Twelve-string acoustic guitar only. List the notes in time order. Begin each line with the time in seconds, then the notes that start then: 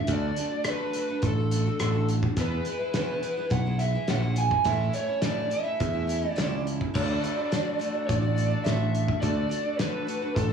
0.08 D3 A3 D4 F#4
0.37 D3 A3 D4 F#4
0.51 A3 D4 F#4
0.67 D3 A3 D4 F#4
0.94 D3 A3 D4 F#4
1.09 A3 D4 F#4
1.38 A3 D4 F#4
1.52 D3 A3 D4 F#4
1.66 A3 D4 F#4
1.81 D3 A3 D4 F#4
1.95 A3 D4 F#4
2.37 E2 B2 E3 G#3 B3 E4
2.65 E3 G#3 B3 E4
2.79 E3 G#3 B3 E4
2.94 E2 B2 E3 G#3 B3 E4
3.22 E3 G#3 B3 E4
3.37 E3 G#3 B3 E4
3.65 E3 G#3 B3 E4
3.79 E3 G#3 B3 E4
3.94 E3 G#3 B3 E4
4.07 E2 B2 E3 G#3 B3 E4
4.23 E3 G#3 B3 E4
4.65 A2 E3 A3 C#4 E4
4.93 E3 A3 C#4 E4
5.08 A3 C#4 E4
5.22 A2 E3 A3 C#4 E4
5.50 E3 A3 C#4 E4
5.63 A3 C#4 E4
5.93 A3 C#4 E4
6.07 E3 A3 C#4 E4
6.22 A3 C#4 E4
6.36 A2 E3 A3 C#4 E4
6.50 A3 C#4 E4
6.94 D3 A3 D4 F#4
7.23 D3 A3 D4 F#4
7.37 A3 D4 F#4
7.51 D3 A3 D4 F#4
7.79 D3 A3 D4 F#4
7.93 A3 D4 F#4
8.22 A3 D4 F#4
8.36 D3 A3 D4 F#4
8.49 A3 D4 F#4
8.64 D3 A3 D4 F#4
8.78 A3 D4 F#4
9.22 D3 A3 D4 F#4
9.49 D3 A3 D4 F#4
9.63 A3 D4 F#4
9.79 D3 A3 D4 F#4
10.07 D3 A3 D4 F#4
10.22 A3 D4 F#4
10.49 F#4